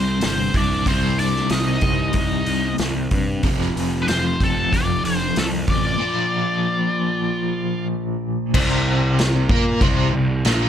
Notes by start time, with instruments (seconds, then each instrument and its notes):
Already playing: picked electric bass C2, overdriven electric guitar C3 G3 C4, lead electric guitar C4 C5
0.21 picked electric bass G1, lead electric guitar C4, snare, open hi-hat
0.25 lead electric guitar C5
0.54 picked electric bass C2, lead electric guitar D4 D5, kick, open hi-hat
0.86 picked electric bass C2, overdriven electric guitar C3 G3 C4, lead electric guitar C4 C5, kick, open hi-hat
1.18 lead electric guitar D4 D5, open hi-hat
1.36 snare
1.50 picked electric bass C2, lead electric guitar D#4 D#5, snare, open hi-hat
1.81 picked electric bass C2, kick, open hi-hat
2.13 picked electric bass C2, kick, open hi-hat
2.46 picked electric bass C2, open hi-hat
2.78 picked electric bass C2, snare, open hi-hat
3.11 picked electric bass G2, kick, open hi-hat
3.43 picked electric bass F1, overdriven electric guitar F2 C3 F3, kick, open hi-hat
3.61 snare
3.76 picked electric bass F1, open hi-hat
4.02 lead electric guitar D4 B4
4.07 picked electric bass F1, lead electric guitar F4 C5, snare, open hi-hat
4.40 picked electric bass F1, lead electric guitar C4 A4, kick, open hi-hat
4.71 picked electric bass F1, lead electric guitar F4 D5, kick, open hi-hat
5.04 picked electric bass F1, lead electric guitar D4 C5, open hi-hat
5.36 picked electric bass C2, lead electric guitar C4 A4, snare, open hi-hat
5.67 picked electric bass A1, lead electric guitar F4 D5, kick, open hi-hat
5.98 overdriven electric guitar A#2 F3 A#3
8.54 picked electric bass C2, overdriven electric guitar C3 C4, kick, crash
9.19 snare, crash
9.49 picked electric bass A#2, overdriven electric guitar A#3 A#4, kick
9.81 picked electric bass C2, overdriven electric guitar C3 C4, kick, crash
10.13 picked electric bass C2, overdriven electric guitar C3
10.45 picked electric bass A#1, overdriven electric guitar A#2 A#3, snare, crash